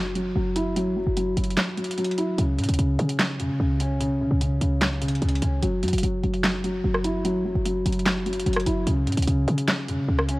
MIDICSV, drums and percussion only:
0, 0, Header, 1, 2, 480
1, 0, Start_track
1, 0, Tempo, 405405
1, 901, Time_signature, 4, 2, 24, 8
1, 12309, End_track
2, 0, Start_track
2, 0, Title_t, "Drums"
2, 183, Note_on_c, 9, 42, 66
2, 301, Note_off_c, 9, 42, 0
2, 659, Note_on_c, 9, 42, 87
2, 778, Note_off_c, 9, 42, 0
2, 901, Note_on_c, 9, 42, 77
2, 1020, Note_off_c, 9, 42, 0
2, 1381, Note_on_c, 9, 42, 78
2, 1500, Note_off_c, 9, 42, 0
2, 1621, Note_on_c, 9, 42, 74
2, 1701, Note_off_c, 9, 42, 0
2, 1701, Note_on_c, 9, 42, 57
2, 1781, Note_off_c, 9, 42, 0
2, 1781, Note_on_c, 9, 42, 44
2, 1860, Note_off_c, 9, 42, 0
2, 1860, Note_on_c, 9, 42, 63
2, 1862, Note_on_c, 9, 38, 106
2, 1867, Note_on_c, 9, 39, 88
2, 1978, Note_off_c, 9, 42, 0
2, 1980, Note_off_c, 9, 38, 0
2, 1986, Note_off_c, 9, 39, 0
2, 2101, Note_on_c, 9, 42, 40
2, 2181, Note_off_c, 9, 42, 0
2, 2181, Note_on_c, 9, 42, 55
2, 2261, Note_off_c, 9, 42, 0
2, 2261, Note_on_c, 9, 42, 70
2, 2341, Note_off_c, 9, 42, 0
2, 2341, Note_on_c, 9, 42, 54
2, 2421, Note_off_c, 9, 42, 0
2, 2421, Note_on_c, 9, 42, 54
2, 2501, Note_off_c, 9, 42, 0
2, 2501, Note_on_c, 9, 42, 52
2, 2579, Note_off_c, 9, 42, 0
2, 2579, Note_on_c, 9, 42, 87
2, 2698, Note_off_c, 9, 42, 0
2, 2821, Note_on_c, 9, 42, 73
2, 2940, Note_off_c, 9, 42, 0
2, 3061, Note_on_c, 9, 42, 54
2, 3121, Note_off_c, 9, 42, 0
2, 3121, Note_on_c, 9, 42, 68
2, 3181, Note_off_c, 9, 42, 0
2, 3181, Note_on_c, 9, 42, 80
2, 3241, Note_off_c, 9, 42, 0
2, 3241, Note_on_c, 9, 42, 93
2, 3301, Note_off_c, 9, 42, 0
2, 3301, Note_on_c, 9, 42, 77
2, 3420, Note_off_c, 9, 42, 0
2, 3541, Note_on_c, 9, 42, 44
2, 3660, Note_off_c, 9, 42, 0
2, 3661, Note_on_c, 9, 42, 75
2, 3779, Note_off_c, 9, 42, 0
2, 3779, Note_on_c, 9, 42, 64
2, 3782, Note_on_c, 9, 38, 108
2, 3787, Note_on_c, 9, 39, 90
2, 3898, Note_off_c, 9, 42, 0
2, 3900, Note_off_c, 9, 38, 0
2, 3905, Note_off_c, 9, 39, 0
2, 4023, Note_on_c, 9, 42, 62
2, 4141, Note_off_c, 9, 42, 0
2, 4499, Note_on_c, 9, 42, 90
2, 4618, Note_off_c, 9, 42, 0
2, 4742, Note_on_c, 9, 42, 74
2, 4860, Note_off_c, 9, 42, 0
2, 5221, Note_on_c, 9, 42, 78
2, 5339, Note_off_c, 9, 42, 0
2, 5461, Note_on_c, 9, 42, 70
2, 5579, Note_off_c, 9, 42, 0
2, 5699, Note_on_c, 9, 42, 62
2, 5702, Note_on_c, 9, 38, 107
2, 5707, Note_on_c, 9, 39, 85
2, 5818, Note_off_c, 9, 42, 0
2, 5820, Note_off_c, 9, 38, 0
2, 5825, Note_off_c, 9, 39, 0
2, 5941, Note_on_c, 9, 42, 66
2, 6021, Note_off_c, 9, 42, 0
2, 6021, Note_on_c, 9, 42, 55
2, 6101, Note_off_c, 9, 42, 0
2, 6101, Note_on_c, 9, 42, 38
2, 6181, Note_off_c, 9, 42, 0
2, 6181, Note_on_c, 9, 42, 54
2, 6261, Note_off_c, 9, 42, 0
2, 6261, Note_on_c, 9, 42, 52
2, 6341, Note_off_c, 9, 42, 0
2, 6341, Note_on_c, 9, 42, 54
2, 6419, Note_off_c, 9, 42, 0
2, 6419, Note_on_c, 9, 42, 91
2, 6538, Note_off_c, 9, 42, 0
2, 6661, Note_on_c, 9, 42, 75
2, 6780, Note_off_c, 9, 42, 0
2, 6901, Note_on_c, 9, 42, 56
2, 6961, Note_off_c, 9, 42, 0
2, 6961, Note_on_c, 9, 42, 67
2, 7021, Note_off_c, 9, 42, 0
2, 7021, Note_on_c, 9, 42, 81
2, 7081, Note_off_c, 9, 42, 0
2, 7081, Note_on_c, 9, 42, 94
2, 7141, Note_off_c, 9, 42, 0
2, 7141, Note_on_c, 9, 42, 78
2, 7260, Note_off_c, 9, 42, 0
2, 7381, Note_on_c, 9, 42, 45
2, 7500, Note_off_c, 9, 42, 0
2, 7501, Note_on_c, 9, 42, 75
2, 7620, Note_off_c, 9, 42, 0
2, 7620, Note_on_c, 9, 42, 64
2, 7622, Note_on_c, 9, 38, 113
2, 7627, Note_on_c, 9, 39, 89
2, 7738, Note_off_c, 9, 42, 0
2, 7741, Note_off_c, 9, 38, 0
2, 7746, Note_off_c, 9, 39, 0
2, 7863, Note_on_c, 9, 42, 62
2, 7982, Note_off_c, 9, 42, 0
2, 8222, Note_on_c, 9, 37, 95
2, 8340, Note_off_c, 9, 37, 0
2, 8340, Note_on_c, 9, 42, 87
2, 8458, Note_off_c, 9, 42, 0
2, 8582, Note_on_c, 9, 42, 77
2, 8700, Note_off_c, 9, 42, 0
2, 9062, Note_on_c, 9, 42, 78
2, 9180, Note_off_c, 9, 42, 0
2, 9301, Note_on_c, 9, 42, 72
2, 9382, Note_off_c, 9, 42, 0
2, 9382, Note_on_c, 9, 42, 57
2, 9461, Note_off_c, 9, 42, 0
2, 9461, Note_on_c, 9, 42, 42
2, 9540, Note_off_c, 9, 42, 0
2, 9540, Note_on_c, 9, 42, 61
2, 9542, Note_on_c, 9, 38, 108
2, 9547, Note_on_c, 9, 39, 87
2, 9658, Note_off_c, 9, 42, 0
2, 9661, Note_off_c, 9, 38, 0
2, 9666, Note_off_c, 9, 39, 0
2, 9781, Note_on_c, 9, 42, 40
2, 9861, Note_off_c, 9, 42, 0
2, 9861, Note_on_c, 9, 42, 54
2, 9941, Note_off_c, 9, 42, 0
2, 9941, Note_on_c, 9, 42, 67
2, 10021, Note_off_c, 9, 42, 0
2, 10021, Note_on_c, 9, 42, 54
2, 10101, Note_off_c, 9, 42, 0
2, 10101, Note_on_c, 9, 42, 53
2, 10141, Note_on_c, 9, 37, 101
2, 10181, Note_off_c, 9, 42, 0
2, 10181, Note_on_c, 9, 42, 54
2, 10259, Note_off_c, 9, 42, 0
2, 10259, Note_on_c, 9, 42, 89
2, 10260, Note_off_c, 9, 37, 0
2, 10378, Note_off_c, 9, 42, 0
2, 10502, Note_on_c, 9, 42, 76
2, 10620, Note_off_c, 9, 42, 0
2, 10741, Note_on_c, 9, 42, 55
2, 10801, Note_off_c, 9, 42, 0
2, 10801, Note_on_c, 9, 42, 66
2, 10861, Note_off_c, 9, 42, 0
2, 10861, Note_on_c, 9, 42, 78
2, 10921, Note_off_c, 9, 42, 0
2, 10921, Note_on_c, 9, 42, 92
2, 10982, Note_off_c, 9, 42, 0
2, 10982, Note_on_c, 9, 42, 78
2, 11100, Note_off_c, 9, 42, 0
2, 11221, Note_on_c, 9, 42, 44
2, 11340, Note_off_c, 9, 42, 0
2, 11341, Note_on_c, 9, 42, 73
2, 11460, Note_off_c, 9, 42, 0
2, 11460, Note_on_c, 9, 42, 63
2, 11462, Note_on_c, 9, 38, 110
2, 11467, Note_on_c, 9, 39, 89
2, 11578, Note_off_c, 9, 42, 0
2, 11580, Note_off_c, 9, 38, 0
2, 11586, Note_off_c, 9, 39, 0
2, 11703, Note_on_c, 9, 42, 64
2, 11821, Note_off_c, 9, 42, 0
2, 12062, Note_on_c, 9, 37, 97
2, 12180, Note_off_c, 9, 37, 0
2, 12180, Note_on_c, 9, 42, 90
2, 12298, Note_off_c, 9, 42, 0
2, 12309, End_track
0, 0, End_of_file